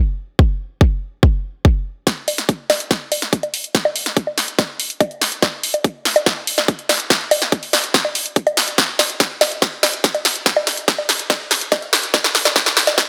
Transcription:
0.39 kick
0.81 kick
1.23 kick
1.65 kick
2.07 kick, snare, closed hi-hat
2.28 open hi-hat, high bongo
2.38 snare, closed hi-hat
2.49 kick, closed hi-hat
2.70 snare, open hi-hat, high bongo
2.80 closed hi-hat
2.91 kick, snare, closed hi-hat
3.12 open hi-hat, high bongo
3.22 snare, closed hi-hat
3.33 kick, closed hi-hat
3.43 closed hi-hat, high bongo
3.54 open hi-hat
3.64 closed hi-hat
3.75 kick, snare, closed hi-hat
3.85 high bongo
3.96 open hi-hat
4.06 snare, closed hi-hat
4.17 kick, closed hi-hat
4.27 high bongo
4.38 snare, open hi-hat
4.48 closed hi-hat
4.59 kick, snare, closed hi-hat, high bongo
4.80 open hi-hat
4.90 closed hi-hat
5.01 kick, closed hi-hat, high bongo
5.11 closed hi-hat
5.21 snare, open hi-hat
5.32 closed hi-hat
5.42 kick, snare, closed hi-hat, high bongo
5.63 open hi-hat
5.74 closed hi-hat, high bongo
5.84 kick, closed hi-hat
6.05 snare, open hi-hat
6.16 closed hi-hat, high bongo
6.26 kick, snare, closed hi-hat
6.47 open hi-hat
6.58 snare, closed hi-hat, high bongo
6.68 kick, closed hi-hat
6.79 closed hi-hat
6.89 snare, open hi-hat, high bongo
7.00 closed hi-hat
7.10 kick, snare, closed hi-hat
7.21 closed hi-hat
7.31 open hi-hat, high bongo
7.42 snare, closed hi-hat
7.52 kick, closed hi-hat
7.63 open hi-hat
7.73 snare, open hi-hat, high bongo
7.84 closed hi-hat
7.94 kick, snare, closed hi-hat
8.05 high bongo
8.15 open hi-hat
8.26 closed hi-hat
8.36 kick, closed hi-hat
8.47 closed hi-hat, high bongo
8.57 snare, open hi-hat
8.68 closed hi-hat
8.78 kick, snare, closed hi-hat
8.99 snare, open hi-hat, high bongo
9.10 closed hi-hat
9.20 kick, snare, closed hi-hat
9.41 snare, open hi-hat, high bongo
9.52 closed hi-hat
9.62 kick, snare, closed hi-hat
9.83 snare, open hi-hat, high bongo
9.94 closed hi-hat
10.04 kick, snare, closed hi-hat
10.15 closed hi-hat, high bongo
10.25 snare, open hi-hat
10.36 closed hi-hat
10.46 kick, snare, closed hi-hat
10.56 high bongo
10.67 snare, open hi-hat
10.77 closed hi-hat
10.88 kick, snare, closed hi-hat
10.98 high bongo
11.09 snare, open hi-hat
11.19 closed hi-hat
11.30 kick, snare, closed hi-hat, high bongo
11.51 snare, open hi-hat
11.61 closed hi-hat
11.72 kick, snare, closed hi-hat, high bongo
11.82 closed hi-hat
11.93 snare, open hi-hat
12.03 closed hi-hat
12.14 kick, snare, closed hi-hat, high bongo
12.24 snare
12.35 snare, open hi-hat
12.45 snare, closed hi-hat, high bongo
12.56 kick, snare, closed hi-hat
12.66 snare
12.77 snare, open hi-hat
12.87 snare, closed hi-hat, high bongo
12.98 kick, snare, closed hi-hat

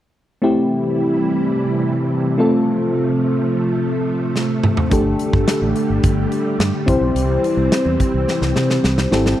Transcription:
0.42 C3 E3 G3 A3 C4 E4 G4
2.38 F3 A3 C4 F4 A4
4.36 snare
4.63 mid tom
4.77 floor tom
4.91 G1 D3 G3 A3 D4 G4 A4, kick, closed hi-hat
5.19 closed hi-hat
5.33 G1, kick
5.48 snare, closed hi-hat
5.62 A1
5.76 closed hi-hat
5.90 G1
6.03 G1, kick, closed hi-hat
6.32 closed hi-hat
6.59 G2, snare, closed hi-hat
6.86 C2 E3 C4 E4 G4 C5, kick, closed hi-hat
7.01 B1
7.15 C2, closed hi-hat
7.44 closed hi-hat
7.57 C2
7.72 snare, closed hi-hat
7.85 E2
8.00 kick, closed hi-hat
8.14 C2
8.28 snare
8.41 C2, snare
8.56 C3, snare
8.70 snare
8.84 C2, snare
8.98 snare
9.11 G#1 C4 E4 G4 A4, snare
9.26 snare

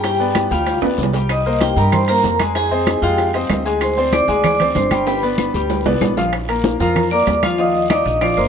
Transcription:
Already playing: G2
0.04 G3 G4 G5, high bongo, high conga, high timbale, long guiro, maracas
0.19 B3 B4 D5, high conga
0.35 high bongo, high conga, high timbale, low timbale, short guiro, maracas
0.51 D2 G3 F4 G4 F5 G5, high bongo, high conga, short guiro, maracas
0.66 high bongo, high conga, high timbale, long guiro, maracas
0.82 D2 B3 B4 D5, high bongo, high conga, high timbale
0.98 C2, high bongo, low bongo, high conga, short guiro, maracas
1.03 low timbale
1.13 G3 G4 G5, high bongo, high conga, low timbale, short guiro, maracas
1.29 D#5 D#6, high bongo, high conga, high timbale, long guiro, claves, maracas
1.46 A#3 A#4 C5, high conga
1.61 G4 G5, high bongo, high conga, high timbale, low timbale, short guiro, maracas
1.76 G2 G3 G4 A#4 G5 A#5, high bongo, high conga, short guiro, maracas
1.92 C5 C6, high bongo, high conga, low conga, high timbale, long guiro, claves, maracas
2.08 A#3 A#4 C5 A#5, high bongo, high conga, high timbale, maracas
2.23 F2, high bongo, low bongo, high conga, low timbale, short guiro, maracas
2.39 G#3 G#4 G#5, high bongo, high conga, high timbale, short guiro, claves, maracas
2.55 G#3 G#4 G#5, high bongo, high conga, high timbale, long guiro, maracas
2.71 C4 C5 D#5, high conga
2.86 high bongo, high conga, high timbale, low timbale, short guiro, claves, maracas
3.02 F2 G#3 F4 G4 F5 G5, high bongo, high conga, short guiro, maracas
3.18 high bongo, high conga, high timbale, long guiro, maracas
3.34 C4 C5 D#5, high bongo, high conga, high timbale
3.50 D2, high bongo, low bongo, high conga, high timbale, low timbale, short guiro, claves, maracas
3.65 G#3 G#4 G#5, high bongo, high conga, short guiro, maracas
3.81 C5 C6, high bongo, high conga, high timbale, long guiro, claves, maracas
3.97 C4 C5 D5, high conga, maracas
4.13 D5 D6, high bongo, high conga, high timbale, low timbale, short guiro, maracas
4.28 D2 G#3 G#4 G#5, high bongo, high conga, short guiro, maracas
4.44 D5 D6, high bongo, high conga, low conga, high timbale, long guiro, claves, maracas
4.60 C4 C5 D5, high bongo, high conga, low conga, high timbale, maracas
4.75 G1 C5 C6, high bongo, low bongo, high conga, low timbale, short guiro, maracas
4.91 G3 G4 G5, high bongo, high conga, high timbale, short guiro, claves, maracas
5.06 G3 G4 B4 G5 B5, high bongo, high conga, high timbale, long guiro, maracas
5.23 B3 B4 D5, high conga, maracas
5.38 high bongo, high conga, short guiro, claves, maracas
5.54 D2 G3 G4 G5, high bongo, high conga, short guiro, maracas
5.70 high bongo, high conga, low timbale, long guiro, maracas
5.85 C2 B3 B4 D5, high bongo, high conga, low timbale
6.01 A#1, high bongo, high conga, low timbale, short guiro, claves, maracas
6.17 F3 F4 F5, low bongo, high conga, low timbale, short guiro, maracas
6.33 high bongo, high conga, high timbale, long guiro, claves
6.49 A#3 A#4 A#5, high bongo, high conga, high timbale
6.64 high bongo, high conga, low timbale, short guiro
6.80 F2 F3 F4 A#4 F5 A#5, high conga, short guiro
6.96 high bongo, high conga, low conga, high timbale, long guiro, claves
7.11 A#3 A#4 D5 A#5 D6, high bongo, high conga
7.27 D#2, high bongo, low bongo, high conga, high timbale, low timbale, short guiro
7.43 F3 F4 F5, high bongo, high conga, high timbale, short guiro, claves
7.58 F3 F4 D#5 F5 D#6, high bongo, high conga, long guiro
7.74 high bongo, high conga
7.90 D#4 D5 D#5 D6 D#6, high bongo, high conga, high timbale, low timbale, short guiro, claves
8.06 A#1 D#5 D#6, high conga, short guiro
8.21 F3 F4 D5 F5 D6, high bongo, high conga, high timbale, long guiro
8.37 G1 A#3 A#4 C5 A#5 C6, high bongo, high conga

